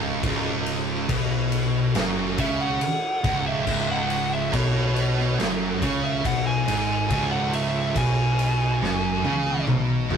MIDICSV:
0, 0, Header, 1, 5, 480
1, 0, Start_track
1, 0, Key_signature, 4, "minor"
1, 0, Tempo, 858369
1, 128, Time_signature, 4, 2, 24, 8
1, 5688, End_track
2, 0, Start_track
2, 0, Title_t, "Lead electric guitar"
2, 0, Program_c, 0, 29
2, 1340, Note_on_c, 0, 76, 93
2, 1452, Note_off_c, 0, 76, 0
2, 1459, Note_on_c, 0, 78, 115
2, 1922, Note_off_c, 0, 78, 0
2, 1939, Note_on_c, 0, 76, 81
2, 2169, Note_off_c, 0, 76, 0
2, 2186, Note_on_c, 0, 78, 95
2, 2412, Note_off_c, 0, 78, 0
2, 2423, Note_on_c, 0, 76, 83
2, 2534, Note_off_c, 0, 76, 0
2, 2541, Note_on_c, 0, 73, 108
2, 3002, Note_off_c, 0, 73, 0
2, 3259, Note_on_c, 0, 73, 116
2, 3372, Note_off_c, 0, 73, 0
2, 3380, Note_on_c, 0, 76, 102
2, 3492, Note_off_c, 0, 76, 0
2, 3500, Note_on_c, 0, 78, 96
2, 3612, Note_off_c, 0, 78, 0
2, 3614, Note_on_c, 0, 80, 114
2, 4078, Note_off_c, 0, 80, 0
2, 4089, Note_on_c, 0, 78, 98
2, 4206, Note_off_c, 0, 78, 0
2, 4216, Note_on_c, 0, 76, 95
2, 4446, Note_off_c, 0, 76, 0
2, 4459, Note_on_c, 0, 80, 99
2, 5392, Note_off_c, 0, 80, 0
2, 5688, End_track
3, 0, Start_track
3, 0, Title_t, "Distorted electric guitar"
3, 0, Program_c, 1, 30
3, 0, Note_on_c, 1, 37, 99
3, 122, Note_off_c, 1, 37, 0
3, 131, Note_on_c, 1, 37, 105
3, 612, Note_off_c, 1, 37, 0
3, 612, Note_on_c, 1, 47, 109
3, 1085, Note_off_c, 1, 47, 0
3, 1093, Note_on_c, 1, 42, 114
3, 1325, Note_off_c, 1, 42, 0
3, 1332, Note_on_c, 1, 49, 122
3, 1565, Note_off_c, 1, 49, 0
3, 1811, Note_on_c, 1, 37, 112
3, 2044, Note_off_c, 1, 37, 0
3, 2050, Note_on_c, 1, 37, 118
3, 2524, Note_off_c, 1, 37, 0
3, 2537, Note_on_c, 1, 47, 105
3, 3007, Note_off_c, 1, 47, 0
3, 3014, Note_on_c, 1, 42, 115
3, 3246, Note_off_c, 1, 42, 0
3, 3257, Note_on_c, 1, 49, 106
3, 3487, Note_off_c, 1, 49, 0
3, 3494, Note_on_c, 1, 47, 112
3, 3725, Note_off_c, 1, 47, 0
3, 3734, Note_on_c, 1, 44, 114
3, 3965, Note_off_c, 1, 44, 0
3, 3976, Note_on_c, 1, 37, 113
3, 4446, Note_off_c, 1, 37, 0
3, 4453, Note_on_c, 1, 47, 114
3, 4924, Note_off_c, 1, 47, 0
3, 4933, Note_on_c, 1, 42, 100
3, 5165, Note_off_c, 1, 42, 0
3, 5171, Note_on_c, 1, 49, 104
3, 5403, Note_off_c, 1, 49, 0
3, 5411, Note_on_c, 1, 47, 124
3, 5643, Note_off_c, 1, 47, 0
3, 5652, Note_on_c, 1, 44, 107
3, 5688, Note_off_c, 1, 44, 0
3, 5688, End_track
4, 0, Start_track
4, 0, Title_t, "Picked electric bass"
4, 0, Program_c, 2, 34
4, 0, Note_on_c, 2, 25, 101
4, 111, Note_off_c, 2, 25, 0
4, 128, Note_on_c, 2, 25, 84
4, 587, Note_off_c, 2, 25, 0
4, 610, Note_on_c, 2, 35, 91
4, 1068, Note_off_c, 2, 35, 0
4, 1088, Note_on_c, 2, 30, 96
4, 1313, Note_off_c, 2, 30, 0
4, 1333, Note_on_c, 2, 37, 101
4, 1556, Note_off_c, 2, 37, 0
4, 1811, Note_on_c, 2, 25, 97
4, 2035, Note_off_c, 2, 25, 0
4, 2051, Note_on_c, 2, 25, 93
4, 2509, Note_off_c, 2, 25, 0
4, 2533, Note_on_c, 2, 35, 94
4, 2990, Note_off_c, 2, 35, 0
4, 3014, Note_on_c, 2, 30, 82
4, 3236, Note_off_c, 2, 30, 0
4, 3254, Note_on_c, 2, 37, 98
4, 3476, Note_off_c, 2, 37, 0
4, 3491, Note_on_c, 2, 35, 104
4, 3714, Note_off_c, 2, 35, 0
4, 3730, Note_on_c, 2, 32, 97
4, 3954, Note_off_c, 2, 32, 0
4, 3971, Note_on_c, 2, 25, 94
4, 4428, Note_off_c, 2, 25, 0
4, 4447, Note_on_c, 2, 35, 98
4, 4906, Note_off_c, 2, 35, 0
4, 4926, Note_on_c, 2, 30, 99
4, 5151, Note_off_c, 2, 30, 0
4, 5162, Note_on_c, 2, 37, 91
4, 5389, Note_off_c, 2, 37, 0
4, 5407, Note_on_c, 2, 35, 100
4, 5632, Note_off_c, 2, 35, 0
4, 5643, Note_on_c, 2, 32, 90
4, 5688, Note_off_c, 2, 32, 0
4, 5688, End_track
5, 0, Start_track
5, 0, Title_t, "Drums"
5, 130, Note_on_c, 9, 36, 121
5, 131, Note_on_c, 9, 51, 121
5, 186, Note_off_c, 9, 36, 0
5, 187, Note_off_c, 9, 51, 0
5, 371, Note_on_c, 9, 51, 77
5, 427, Note_off_c, 9, 51, 0
5, 609, Note_on_c, 9, 51, 118
5, 610, Note_on_c, 9, 36, 123
5, 665, Note_off_c, 9, 51, 0
5, 666, Note_off_c, 9, 36, 0
5, 849, Note_on_c, 9, 51, 77
5, 905, Note_off_c, 9, 51, 0
5, 1089, Note_on_c, 9, 51, 101
5, 1097, Note_on_c, 9, 38, 100
5, 1145, Note_off_c, 9, 51, 0
5, 1152, Note_off_c, 9, 38, 0
5, 1332, Note_on_c, 9, 36, 118
5, 1332, Note_on_c, 9, 51, 83
5, 1388, Note_off_c, 9, 36, 0
5, 1388, Note_off_c, 9, 51, 0
5, 1572, Note_on_c, 9, 51, 104
5, 1628, Note_off_c, 9, 51, 0
5, 1812, Note_on_c, 9, 36, 124
5, 1812, Note_on_c, 9, 51, 79
5, 1868, Note_off_c, 9, 36, 0
5, 1868, Note_off_c, 9, 51, 0
5, 2052, Note_on_c, 9, 49, 103
5, 2053, Note_on_c, 9, 36, 96
5, 2107, Note_off_c, 9, 49, 0
5, 2108, Note_off_c, 9, 36, 0
5, 2292, Note_on_c, 9, 51, 71
5, 2348, Note_off_c, 9, 51, 0
5, 2534, Note_on_c, 9, 36, 109
5, 2535, Note_on_c, 9, 51, 116
5, 2590, Note_off_c, 9, 36, 0
5, 2591, Note_off_c, 9, 51, 0
5, 2775, Note_on_c, 9, 51, 66
5, 2831, Note_off_c, 9, 51, 0
5, 2904, Note_on_c, 9, 38, 35
5, 2960, Note_off_c, 9, 38, 0
5, 3017, Note_on_c, 9, 51, 95
5, 3025, Note_on_c, 9, 38, 103
5, 3073, Note_off_c, 9, 51, 0
5, 3081, Note_off_c, 9, 38, 0
5, 3254, Note_on_c, 9, 36, 125
5, 3257, Note_on_c, 9, 51, 92
5, 3310, Note_off_c, 9, 36, 0
5, 3312, Note_off_c, 9, 51, 0
5, 3493, Note_on_c, 9, 36, 119
5, 3496, Note_on_c, 9, 51, 127
5, 3549, Note_off_c, 9, 36, 0
5, 3551, Note_off_c, 9, 51, 0
5, 3736, Note_on_c, 9, 51, 89
5, 3791, Note_off_c, 9, 51, 0
5, 3972, Note_on_c, 9, 36, 107
5, 3972, Note_on_c, 9, 51, 107
5, 4028, Note_off_c, 9, 36, 0
5, 4028, Note_off_c, 9, 51, 0
5, 4212, Note_on_c, 9, 51, 87
5, 4268, Note_off_c, 9, 51, 0
5, 4449, Note_on_c, 9, 36, 113
5, 4449, Note_on_c, 9, 51, 121
5, 4505, Note_off_c, 9, 36, 0
5, 4505, Note_off_c, 9, 51, 0
5, 4691, Note_on_c, 9, 51, 81
5, 4746, Note_off_c, 9, 51, 0
5, 4938, Note_on_c, 9, 38, 62
5, 4994, Note_off_c, 9, 38, 0
5, 5170, Note_on_c, 9, 48, 96
5, 5226, Note_off_c, 9, 48, 0
5, 5292, Note_on_c, 9, 48, 80
5, 5348, Note_off_c, 9, 48, 0
5, 5410, Note_on_c, 9, 47, 109
5, 5466, Note_off_c, 9, 47, 0
5, 5650, Note_on_c, 9, 43, 107
5, 5688, Note_off_c, 9, 43, 0
5, 5688, End_track
0, 0, End_of_file